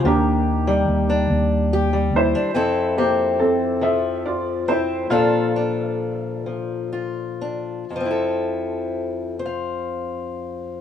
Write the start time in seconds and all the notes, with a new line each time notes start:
0.04 D#2 D#3 A#3 D4 G4
0.67 G3
0.88 D#2
1.10 D4
1.30 D#2
1.73 G4
1.93 G3
2.13 D#2 E4 C5
2.35 D4
2.54 F2 C4 E4 A4
2.97 A#3 C4 G4
3.39 C4 A4
3.81 F3 A4 E5
4.25 F4 D5
4.68 C4 E4 C5
5.10 A#2 D4 F4 A4 F5
5.56 D4
6.46 F3
6.93 F4
7.41 D4
7.90 F2
7.96 F3
8.00 C4
8.05 E4
8.11 A4
9.39 C5
9.46 F5